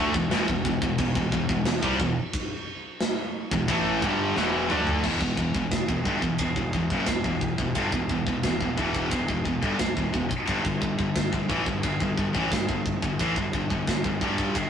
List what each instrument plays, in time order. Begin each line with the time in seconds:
Already playing: picked electric bass D2, distorted electric guitar D3 A3
0.14 picked electric bass E1, distorted electric guitar E2 B2, kick
0.31 picked electric bass E1, distorted electric guitar E2 B2, snare, crash
0.48 picked electric bass E1, distorted electric guitar E2 B2, kick
0.65 picked electric bass E1, distorted electric guitar E2 B2, kick
0.82 picked electric bass E1, distorted electric guitar E2 B2, kick
0.98 picked electric bass E1, distorted electric guitar E2 B2, kick, crash
1.15 picked electric bass E1, distorted electric guitar E2 B2, kick
1.32 picked electric bass E1, distorted electric guitar E2 B2, kick
1.49 picked electric bass E1, distorted electric guitar E2 B2, kick
1.65 picked electric bass E1, distorted electric guitar E2 B2, snare, crash
1.82 picked electric bass C2, distorted electric guitar C3 G3, kick
1.99 picked electric bass E1, distorted electric guitar E2 B2, kick
2.33 kick, crash
3.00 snare, crash
3.51 picked electric bass E1, distorted electric guitar E2 B2, kick
3.68 picked electric bass A1, distorted electric guitar A2 E3 A3, kick, crash
4.01 picked electric bass G1, distorted electric guitar G2 D3 G3, kick
4.35 picked electric bass E1, distorted electric guitar E2 B2 E3, snare
4.68 picked electric bass D2, distorted electric guitar D3 A3 D4, mid tom
4.87 floor tom
5.03 picked electric bass E1, distorted electric guitar E2 B2, kick, crash
5.20 picked electric bass E1, distorted electric guitar E2 B2, kick
5.36 picked electric bass E1, distorted electric guitar E2 B2, kick
5.54 picked electric bass E1, distorted electric guitar E2 B2, kick
5.71 kick, snare, ride bell
5.88 picked electric bass E1, distorted electric guitar E2 B2, kick
6.05 picked electric bass G1, distorted electric guitar G2 D3, kick
6.22 picked electric bass E1, distorted electric guitar E2 B2, kick
6.38 picked electric bass E1, distorted electric guitar E2 B2, kick, ride bell
6.56 picked electric bass E1, distorted electric guitar E2 B2, kick
6.73 picked electric bass E1, distorted electric guitar E2 B2, kick
6.90 picked electric bass F#1, distorted electric guitar F#2 C#3, kick
7.06 picked electric bass E1, distorted electric guitar E2 B2, kick, snare, ride bell
7.24 picked electric bass E1, distorted electric guitar E2 B2, kick
7.41 kick
7.58 picked electric bass E1, distorted electric guitar E2 B2, kick
7.75 picked electric bass G1, distorted electric guitar G2 D3, kick, ride bell
7.92 picked electric bass E1, distorted electric guitar E2 B2, kick
8.09 picked electric bass E1, distorted electric guitar E2 B2, kick
8.26 picked electric bass E1, distorted electric guitar E2 B2, kick
8.43 picked electric bass E1, distorted electric guitar E2 B2, kick, snare, ride bell
8.60 picked electric bass E1, distorted electric guitar E2 B2, kick
8.77 picked electric bass E1, distorted electric guitar E2 B2 E3, kick
8.95 kick
9.11 picked electric bass E1, distorted electric guitar E2 B2, kick, ride bell
9.28 picked electric bass E1, distorted electric guitar E2 B2, kick
9.44 picked electric bass E1, distorted electric guitar E2 B2, kick
9.62 picked electric bass G1, distorted electric guitar G2 D3, kick
9.79 picked electric bass E1, distorted electric guitar E2 B2, kick, snare, ride bell
9.97 picked electric bass E1, distorted electric guitar E2 B2, kick
10.13 picked electric bass E1, distorted electric guitar E2 B2, kick
10.29 muted distorted electric guitar stroke, muted picked electric bass stroke, kick
10.46 picked electric bass G1, distorted electric guitar G2 D3, kick, ride bell
10.64 picked electric bass G1, distorted electric guitar G2 D3, kick
10.81 picked electric bass G1, distorted electric guitar G2 D3, kick
10.98 picked electric bass G1, distorted electric guitar G2 D3, kick
11.16 kick, snare, ride bell
11.32 picked electric bass G1, distorted electric guitar G2 D3, kick
11.49 picked electric bass A1, distorted electric guitar A2 E3, kick
11.66 picked electric bass G1, distorted electric guitar G2 D3, kick
11.83 picked electric bass G1, distorted electric guitar G2 D3, kick, ride bell
12.00 picked electric bass G1, distorted electric guitar G2 D3, kick
12.17 picked electric bass G1, distorted electric guitar G2 D3, kick
12.33 picked electric bass A1, distorted electric guitar A2 E3, kick
12.51 picked electric bass G1, distorted electric guitar G2 D3, kick, snare, ride bell
12.68 picked electric bass G1, distorted electric guitar G2 D3, kick
12.86 kick
13.02 picked electric bass G1, distorted electric guitar G2 D3, kick
13.19 picked electric bass A1, distorted electric guitar A2 E3, kick, ride bell
13.36 picked electric bass G1, distorted electric guitar G2 D3, kick
13.53 picked electric bass G1, distorted electric guitar G2 D3, kick
13.70 picked electric bass G1, distorted electric guitar G2 D3, kick
13.87 picked electric bass G1, distorted electric guitar G2 D3, kick, snare, ride bell
14.04 picked electric bass G1, distorted electric guitar G2 D3, kick
14.21 picked electric bass G1, distorted electric guitar G2 D3 G3, kick
14.38 kick
14.55 picked electric bass G1, distorted electric guitar G2 D3, kick, ride bell